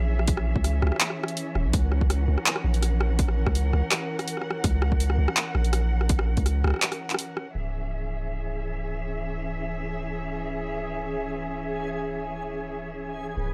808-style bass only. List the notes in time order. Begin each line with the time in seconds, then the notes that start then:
Already playing: A#1
0.56 C#2
0.83 C#2
1.55 D#1
1.65 A#1
1.74 C#2
2.28 C#2
2.64 A#1
3.46 C#2
3.74 C#2
4.64 C#2
5.18 C#2
5.55 A#1
6.37 C#2
6.64 C#2
7.55 C#1
13.37 C#1